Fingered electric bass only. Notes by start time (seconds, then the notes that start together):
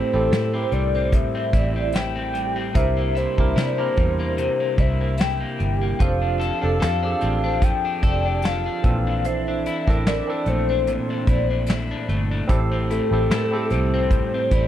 0.14 A1
0.32 A2
0.72 C2
1.53 A1
2.75 C2
3.38 C2
3.56 C3
3.98 E2
4.78 C2
5.60 G1
6.00 F1
6.63 F1
6.81 F2
7.22 A1
8.03 F1
8.84 A#1
9.88 A1
10.46 A#1
11.28 A#1
12.09 G1
12.49 A1
13.11 A1
13.30 A2
13.71 C2
14.51 A1